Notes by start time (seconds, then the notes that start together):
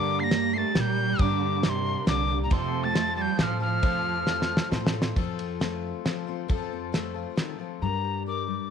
Already playing: G1 G2 D3 G3 A#3 D4 G4 A#4 D5 A#5 D6
0.20 A#3 A#6 C7
0.30 G3 A#3 D4 G4 A#4 D5, snare, ride
0.53 G3 A3 A#3 D4 G4 C7
0.58 A6
0.74 A#2 G3 A#3 D4 G4 A#4 D5 A6, snare, ride
0.80 G6
1.18 G1 G2 D3 G3 A#3 D4 G4 A#4 D5 D6, kick, ride
1.63 C3 G3 A#3 D4 G4 A#4 D5 D6, snare, ride
1.69 C6
1.85 G3 A#3 D4 G4
2.07 C2 D3 G3 A#3 D4 G4 A#4 D5 D6, snare, ride
2.28 G3 A#3 D4 G4
2.44 A#2 A#5
2.50 F1 F2 C3 F3 A3 C4 F4 A4 C5 A5 C6, kick, ride
2.84 A3 A6
2.94 F3 A3 C4 F4 A4 C5, snare, ride
3.15 G3 C4 F4 A4 A6
3.22 G6
3.37 A2 F3 A3 C4 F4 A4 C5 G6, snare, ride
3.43 F6
3.60 F3 C4 F4 A4 F6
3.82 F1 F2 F3 A3 C4 F4 A4 C5, kick, ride
4.26 F3 A3 C4 F4 A4 C5, snare
4.42 snare
4.57 snare
4.71 A2 F3 A3 C4 F4 A4 C5, snare
4.87 snare
4.93 C4 F4 A4
5.02 snare
5.16 F2 F3 C4 F4 A4, kick, ride
5.38 C4, ride
5.60 F3 A3 C4 F4 A4, snare, ride
6.05 F3 C4 F4 A4, snare, ride
6.27 C4 F4 A4
6.48 F2 F3 C4 F4 A4, kick, ride
6.72 C4
6.92 F3 A3 C4 F4 A4, snare, ride
7.14 C4 F4 A4
7.36 D#3 F3 C4 F4 A4, snare, ride
7.59 F3 C4 F4 A4
7.81 G2 G3 D4 G4 A#4 A#5
8.04 G4
8.26 A#4 D6
8.48 G3